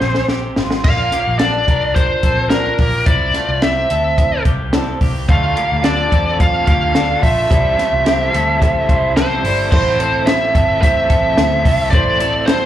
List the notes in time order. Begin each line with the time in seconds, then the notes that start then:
Already playing: C5
0.01 A#1 C4 G#4, snare
0.15 snare
0.28 C4 G4, snare
0.56 G#1 G#3 F4, snare
0.71 snare
0.84 A#1 A#3 F4 A#4 D5 F5, kick, crash
1.12 A#3 G4, snare, closed hi-hat
1.27 A#1
1.39 D4 F4 A4 A#4 D5, snare, closed hi-hat
1.68 C2 D4 A#4, kick, closed hi-hat
1.95 F4 A#4 C5 D5, kick, closed hi-hat
2.23 A#1 C4 A4, kick, closed hi-hat
2.50 D4 F4 A#4 D5, snare, closed hi-hat
2.79 A#1 A#3 G4, kick, open hi-hat
3.05 C2 G3 E4 C5 D5, kick, closed hi-hat
3.34 A3 F4, snare, closed hi-hat
3.49 C2
3.61 C4 E4 G4 C5 D5 E5, snare, closed hi-hat
3.90 D2 C4 A4, closed hi-hat
4.17 E4 C5 D5, kick, closed hi-hat
4.45 C2 A#3 G4, kick, closed hi-hat
4.73 C4 E4 A4 C5 D5, snare, closed hi-hat
5.01 C2 A#3 G4, kick, open hi-hat
5.28 D2 D3 A3 D4 F4 A4 D5 F5, kick, closed hi-hat
5.57 A#3 G4, closed hi-hat
5.72 D2
5.83 D3 A3 D4 F4 A4 D5, snare, closed hi-hat
6.12 E2 C4 D4 F4 A4, kick, closed hi-hat
6.39 A3 D4 F4 A4 D5 F5, kick, closed hi-hat
6.67 D2 A#3 G4 F5, kick, closed hi-hat
6.94 D3 A3 D4 F4 A4 D5, snare, closed hi-hat
7.22 A#1 A3 D4 F4 A4 E5, kick, open hi-hat
7.49 C2 C3 E3 G3 C4 E4 G4 A4 C5, kick, closed hi-hat
7.78 A3 F4, snare, closed hi-hat
7.93 C2
8.05 C3 E3 G3 C4 E4 G4 A4 C5, snare, closed hi-hat
8.32 D2 G3 C4 E4 A4, closed hi-hat
8.60 G3 C4 E4 G4 A4 C5, kick, closed hi-hat
8.89 C2 E4 C5, kick, closed hi-hat
9.16 C3 E3 G3 C4 E4 G4 A4 C5, snare, closed hi-hat
9.44 G1 G3 C4 E4 A4, open hi-hat
9.71 A1 A2 E3 A3 C4 E4 A4 C5, kick, crash
9.99 C4 E4 A4 C5, closed hi-hat
10.26 A3 C4 E4 A4 C5 E5, snare, closed hi-hat
10.55 G1 C4 A4, kick, closed hi-hat
10.81 A2 E3 A3 C4 E4 G4 A4 C5 E5, kick, closed hi-hat
11.10 A1 C4 A4, kick, closed hi-hat
11.37 D2 A3 C4 E4 A4 C5, snare, closed hi-hat
11.64 C2 A3 C4 E4 A4, kick, open hi-hat
11.91 A1 A2 E3 A3 C4 E4 A4 C5 D5, kick, closed hi-hat
11.95 C5
12.20 A3 C4 E4 A4 C5, closed hi-hat
12.46 A3 C4 E4 A4 C5, snare, closed hi-hat
12.50 A4